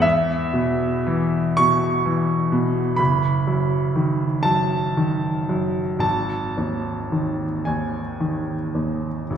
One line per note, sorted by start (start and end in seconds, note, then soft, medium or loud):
0.00 2.92 E2 soft
0.00 1.59 E5 medium
0.53 1.39 B2 soft
1.07 1.88 E3 soft
1.57 2.34 B2 soft
1.57 2.98 C#6 medium
2.06 2.80 E3 soft
2.52 2.99 B2 soft
2.96 5.98 F#1 medium
2.96 4.44 B5 medium
3.47 4.25 F#2 soft
3.96 4.76 D#3 soft
4.43 5.28 F#2 soft
4.43 5.99 A5 medium
4.97 5.81 D#3 soft
5.49 6.03 F#2 soft
5.99 9.24 G#1 soft
5.99 7.64 A5 medium
6.57 7.44 D#2 soft
7.12 7.98 D#3 soft
7.65 8.53 D#2 soft
7.65 9.37 G#5 soft
8.20 9.08 D#3 soft
8.75 9.30 D#2 soft
9.30 9.37 G#1 soft